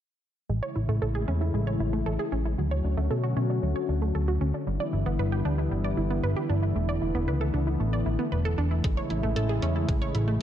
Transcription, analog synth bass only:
0.50 A1
0.76 A1
0.88 A1
1.02 A1
1.28 E2
1.54 A1
1.80 A1
2.06 A1
2.32 A1
2.58 D2
2.84 D2
2.98 D2
3.10 B2
3.37 B2
3.63 D2
3.89 D2
4.15 D2
4.41 D2
4.67 G1
4.93 G1
5.06 G1
5.19 G1
5.45 D2
5.71 G1
5.97 G1
6.23 G1
6.50 G1
6.76 E1
7.02 E1
7.15 E1
7.27 C#2
7.54 C#2
7.80 A1
8.06 A1
8.32 E1
8.58 E1
8.84 A1
9.10 A1
9.23 A1
9.36 A1
9.62 E2
9.89 A1
10.15 A1

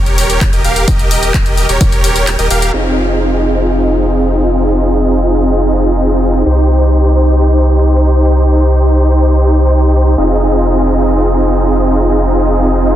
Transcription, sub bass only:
Already playing: D#1
0.53 D#1
0.65 D#1
0.88 D#1
1.69 D#1
1.81 D#1
2.39 D#1
2.51 D#1
2.74 F1
6.46 C2
10.18 F1

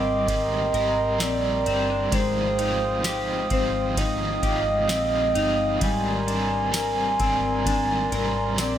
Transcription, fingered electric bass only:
Already playing: G#1
0.74 G#1
1.20 A#1
1.66 G1
2.12 G#1
3.51 G#1
4.43 G#1
4.89 A#1
5.35 G1
5.81 G#1
7.20 G#1
8.12 G#1
8.58 A#1

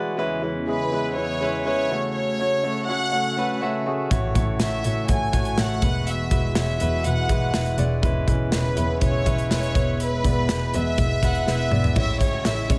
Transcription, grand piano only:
Already playing: G#3 E4 F#4 G#4 B4 C#5 D5
0.17 E3 G#3 C#4 E4 B4
0.42 G#3 C#4 E4 B4
0.67 G#3 C#4 E4 G#4
0.92 G#3 C#4 E4 B4
1.16 G#3 C#4 E4 B4
1.41 G#3 C#4 E4 B4
1.65 G#3 C#4 E4 B4
1.90 C#3 A3 C#4 F#4 C#5
2.39 A3 C#4 F#4 C#5
2.63 A3 C#4 F#4 C#5
2.88 A3 C#4 F#4 C#5
3.12 A3 C#4 F#4 C#5
3.37 A3 C#4 F#4 B4
3.61 A3 C#4 F#4 E5
3.86 A3 C#4 F#4 G#4
4.10 A2 E3 A3 E4 F#4 C#5
4.35 A3 E4 F#4 C#5
4.59 A3 E4 F#4 C#5
4.84 A3 E4 F#4 C#5
5.08 A3 E4 F#4 C#5
5.33 A3 E4 F#4 C#5
5.57 A3 E4 F#4 C#5
5.82 B2 G#3 E4 F#4 B4
6.31 G#3 E4 F#4 B4
6.55 G#3 E4 F#4 C#5
6.79 G#3 E4 F#4 B4
7.04 G#3 E4 F#4 B4
7.29 G#3 E4 F#4 B4
7.53 G#3 E4 F#4 B4
7.77 G#3 E4 F#4 D5
8.02 E3 G#3 C#4 E4 B4
8.27 G#3 C#4 E4 B4
8.51 G#3 C#4 E4 B4
8.76 G#3 C#4 E4 B4
9.01 G#3 C#4 E4 B4
9.25 G#3 C#4 E4 B4
9.49 G#3 C#4 E4 B4
9.75 B2 G#3 B3 E4 B4
10.24 G#3 B3 E4 D5
10.49 G#3 B3 E4 B4
10.74 G#3 B3 E4 B4
10.98 G#3 B3 E4
11.22 G#3 B3 E4 B4
11.46 G#3 B3 E4 B4
11.71 G#3 B3 E4 D5
11.96 A2 G#3 C#4 E4 C#5
12.21 G#3 C#4 E4 C#5
12.45 G#3 C#4 E4 C#5
12.69 G#3 C#4 E4 C#5

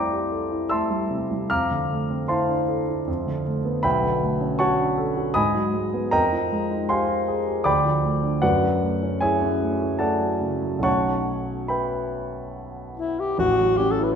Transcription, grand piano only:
Already playing: F2 G3 A3 C4 E4 C5 D5 F5 G5 A5 A#5 C6 D6
0.12 G4
0.32 A4
0.51 E4
0.69 A3 E5 A5 C6 E6
0.90 G3
1.11 C3
1.31 G3
1.50 F2 F5 A#5 D6 F6
1.71 D3
1.91 A3
2.10 C4
2.28 E4 C5 F5 A5 C6
2.49 D4
2.68 A4
2.89 E4
3.07 F2
3.27 D3
3.46 A3
3.65 B3
3.83 B1 B4 E5 G5 B5
4.02 D3
4.22 A3
4.41 C#4
4.59 F#4 C#5 F#5 A5 C#6
4.79 D4
4.98 A4
5.17 F#4
5.34 G#2 D#5 G#5 B5 D#6
5.55 F#3
5.74 G#3
5.94 B3
6.11 F2 A#4 D#5 G5 A#5
6.33 F3
6.52 G#3
6.71 D#4
6.89 G4 C5 F5 G#5 C6
7.09 F4
7.28 G#4
7.47 G4
7.64 D2 D5 G5 B5 D6
7.85 F3
8.04 A3
8.23 D4
8.42 F#2 F#4 B4 D5 F#5
8.63 F#3
8.83 A3
9.03 C#4
9.21 E4 G#4 C#5 E5 G#5
9.41 C#4
9.61 A3
9.80 E4
9.99 A3 A4 D5 F#5 A5
10.20 F#3
10.41 C#3
10.62 F#3
10.79 B1 F#3 A3 C#4 C#6
10.83 D#4 C#5 F#5 A5
11.68 B4 E5 G5 B5
13.38 A1
13.59 F#3
13.80 C#4
13.99 E4

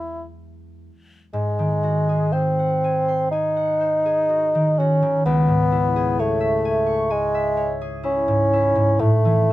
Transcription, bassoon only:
Already playing: E4
1.34 G#3
2.33 C4
3.31 D#4
4.79 C#4
5.26 B3
6.20 A3
7.11 G#3
8.05 C#4
9.00 A3

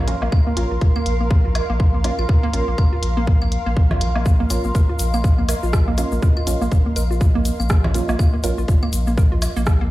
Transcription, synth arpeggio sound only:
0.22 A#3
0.47 A#3
0.71 F4
0.96 A#3
1.20 A#3
1.45 F4
1.70 A#3
1.94 A#3
2.19 F4
2.43 A#3
2.68 A#3
2.93 F4
3.17 A#3
3.42 A#3
3.66 A#3
3.91 F4
4.16 A#3
4.40 A#3
4.65 A#3
4.75 A#4
4.89 F4
5.14 A#3
5.38 A#3
5.49 A#4
5.63 F4
5.88 A#3
6.12 A#3
6.23 A#4
6.37 F4
6.61 A#3
6.86 A#3
6.96 A#4
7.11 F4
7.35 A#3
7.60 A#3
7.70 A#4
7.84 F4
8.09 A#3
8.34 A#3
8.44 A#4
8.58 F4
8.83 A#3
9.07 A#3
9.18 A#4
9.32 F4
9.56 A#3
9.81 A#3

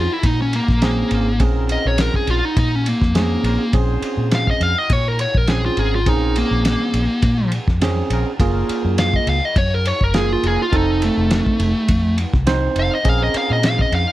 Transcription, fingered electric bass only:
0.24 A#2
0.69 A#1
1.11 G#1
1.40 A#1
1.85 A#1
2.27 A#1
2.57 A#2
3.02 F2
3.43 A#1
3.73 A#1
4.17 A#2
4.60 F2
4.90 A#2
5.35 A#1
5.77 G#1
6.06 A#1
6.51 A#1
6.94 A#1
7.23 A#2
7.68 F2
8.10 A#1
8.39 F#1
8.69 muted fingered electric bass stroke
8.85 F#2
9.27 C#2
9.56 F#2
10.01 F#1
10.43 F1
10.73 F1
11.17 F1
11.60 F1
11.89 F2
12.33 C2
12.76 F1
13.05 A#1
13.34 muted fingered electric bass stroke
13.50 A#2
13.92 F2

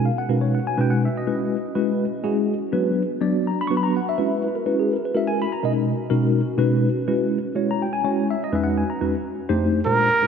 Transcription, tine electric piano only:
Already playing: D#4 F#4 A#4
0.05 F5
0.18 F#5
0.29 B2 G#3 C#4 D#4 F#4 A#4 B4
0.41 C#5
0.55 F#5
0.67 G#5
0.77 B2 G#3 C#4 D#4 F#4 B4 G5
0.90 F#5
1.05 E5
1.18 D#5
1.27 G#3 C#4 E4 F#4 B4
1.75 G#3 C#4 E4 F#4 B4
2.24 G#3 C#4 E4 F#4 G#4
2.72 F#3 B3 D4 F#4 B4
3.20 F#3 B3 D4 F#4 D5
3.47 A#5
3.61 B5
3.67 F#3 B3 D4 F#4 B4 C#6
3.77 B5
3.83 A#5
3.97 F#5
4.09 E5
4.18 G#3 C#4 E4 F#4 B4
4.44 B4
4.55 A#4
4.66 G#3 C#4 E4 F#4 B4
4.79 G#4
4.93 A#4
5.05 B4
5.14 G#3 C#4 E4 F#4 A#4 E5
5.27 G#5
5.42 B5
5.52 A#5
5.63 B2 G#3 C#4 D#4 F#4 A#4 D#5
6.10 B2 G#3 C#4 D#4 F#4 A#4
6.58 B2 G#3 C#4 D#4 F#4 B4
7.08 G#3 C#4 E4 F#4 B4
7.55 G#3 C#4 E4 F#4 C#5
7.71 A#5
7.82 G5
7.93 G#5
8.04 G#3 C#4 E4 F#4 C#5
8.31 E5
8.44 D#5
8.52 E2 G#3 C#4 D#4 F#4 B4 E5
8.64 F#5
8.78 G#5
8.90 A#5
9.01 E2 G#3 C#4 D#4 F#4 B4
9.49 F2 A3 D4 D#4 G4 C5
9.85 A#2 G#3 D4 F4 G4 C5
10.22 A#2 G#3 D4 F4 G4 A#4

